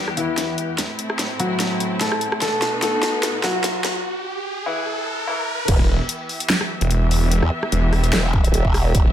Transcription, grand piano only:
0, 0, Header, 1, 2, 480
1, 0, Start_track
1, 0, Key_signature, 1, "minor"
1, 0, Tempo, 408163
1, 921, Time_signature, 4, 2, 24, 8
1, 10733, End_track
2, 0, Start_track
2, 0, Title_t, "Grand piano"
2, 0, Program_c, 0, 0
2, 202, Note_on_c, 0, 52, 71
2, 202, Note_on_c, 0, 64, 90
2, 833, Note_off_c, 0, 52, 0
2, 833, Note_off_c, 0, 64, 0
2, 1641, Note_on_c, 0, 54, 71
2, 1641, Note_on_c, 0, 66, 88
2, 2272, Note_off_c, 0, 54, 0
2, 2272, Note_off_c, 0, 66, 0
2, 2362, Note_on_c, 0, 57, 76
2, 2362, Note_on_c, 0, 69, 91
2, 2694, Note_off_c, 0, 57, 0
2, 2694, Note_off_c, 0, 69, 0
2, 2842, Note_on_c, 0, 57, 77
2, 2842, Note_on_c, 0, 69, 96
2, 3175, Note_off_c, 0, 57, 0
2, 3175, Note_off_c, 0, 69, 0
2, 3321, Note_on_c, 0, 69, 91
2, 3322, Note_on_c, 0, 57, 74
2, 3953, Note_off_c, 0, 57, 0
2, 3953, Note_off_c, 0, 69, 0
2, 4041, Note_on_c, 0, 54, 75
2, 4041, Note_on_c, 0, 66, 93
2, 4672, Note_off_c, 0, 54, 0
2, 4672, Note_off_c, 0, 66, 0
2, 5481, Note_on_c, 0, 52, 79
2, 5482, Note_on_c, 0, 64, 95
2, 6112, Note_off_c, 0, 52, 0
2, 6113, Note_off_c, 0, 64, 0
2, 6202, Note_on_c, 0, 52, 81
2, 6202, Note_on_c, 0, 64, 94
2, 6534, Note_off_c, 0, 52, 0
2, 6534, Note_off_c, 0, 64, 0
2, 10733, End_track
0, 0, End_of_file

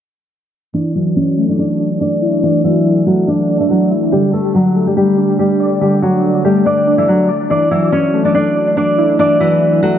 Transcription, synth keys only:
0, 0, Header, 1, 2, 480
1, 0, Start_track
1, 0, Key_signature, 2, "major"
1, 0, Tempo, 422535
1, 842, Time_signature, 4, 2, 24, 8
1, 11344, End_track
2, 0, Start_track
2, 0, Title_t, "Synth keys"
2, 0, Program_c, 0, 88
2, 839, Note_on_c, 0, 52, 93
2, 1075, Control_c, 0, 64, 127
2, 1083, Note_on_c, 0, 54, 76
2, 1308, Note_off_c, 0, 52, 0
2, 1322, Note_on_c, 0, 52, 88
2, 1562, Note_on_c, 0, 57, 83
2, 2040, Note_on_c, 0, 62, 77
2, 2283, Note_off_c, 0, 54, 0
2, 2519, Note_on_c, 0, 64, 80
2, 2522, Note_off_c, 0, 52, 0
2, 2762, Note_off_c, 0, 57, 0
2, 2763, Note_on_c, 0, 52, 93
2, 3004, Note_on_c, 0, 54, 83
2, 3228, Note_off_c, 0, 52, 0
2, 3241, Note_off_c, 0, 62, 0
2, 3242, Note_on_c, 0, 52, 84
2, 3483, Note_on_c, 0, 57, 80
2, 3721, Note_off_c, 0, 64, 0
2, 3963, Note_on_c, 0, 62, 88
2, 4203, Note_off_c, 0, 54, 0
2, 4441, Note_on_c, 0, 64, 81
2, 4442, Note_off_c, 0, 52, 0
2, 4682, Note_off_c, 0, 64, 0
2, 4683, Note_off_c, 0, 57, 0
2, 4683, Note_off_c, 0, 62, 0
2, 4685, Note_on_c, 0, 50, 92
2, 4697, Control_c, 0, 64, 0
2, 4903, Control_c, 0, 64, 127
2, 4923, Note_on_c, 0, 55, 78
2, 5147, Note_off_c, 0, 50, 0
2, 5160, Note_on_c, 0, 50, 84
2, 5405, Note_on_c, 0, 57, 73
2, 5879, Note_on_c, 0, 62, 80
2, 6123, Note_off_c, 0, 55, 0
2, 6361, Note_off_c, 0, 50, 0
2, 6361, Note_on_c, 0, 74, 82
2, 6603, Note_off_c, 0, 57, 0
2, 6606, Note_on_c, 0, 50, 104
2, 7071, Note_off_c, 0, 50, 0
2, 7081, Note_off_c, 0, 62, 0
2, 7085, Note_on_c, 0, 50, 77
2, 7322, Note_on_c, 0, 57, 81
2, 7561, Note_off_c, 0, 74, 0
2, 7805, Note_on_c, 0, 62, 83
2, 8277, Note_on_c, 0, 74, 83
2, 8283, Note_off_c, 0, 50, 0
2, 8519, Note_on_c, 0, 52, 90
2, 8520, Note_off_c, 0, 74, 0
2, 8522, Note_off_c, 0, 57, 0
2, 8524, Note_off_c, 0, 62, 0
2, 8537, Control_c, 0, 64, 0
2, 8718, Control_c, 0, 64, 127
2, 8763, Note_on_c, 0, 54, 76
2, 8988, Note_off_c, 0, 52, 0
2, 9002, Note_on_c, 0, 52, 86
2, 9243, Note_on_c, 0, 57, 83
2, 9720, Note_on_c, 0, 62, 78
2, 9962, Note_off_c, 0, 54, 0
2, 10198, Note_on_c, 0, 64, 79
2, 10202, Note_off_c, 0, 52, 0
2, 10442, Note_off_c, 0, 57, 0
2, 10444, Note_on_c, 0, 52, 94
2, 10684, Note_on_c, 0, 54, 81
2, 10908, Note_off_c, 0, 52, 0
2, 10921, Note_off_c, 0, 62, 0
2, 10922, Note_on_c, 0, 52, 84
2, 11164, Note_on_c, 0, 57, 82
2, 11344, Note_off_c, 0, 52, 0
2, 11344, Note_off_c, 0, 54, 0
2, 11344, Note_off_c, 0, 57, 0
2, 11344, Note_off_c, 0, 64, 0
2, 11344, End_track
0, 0, End_of_file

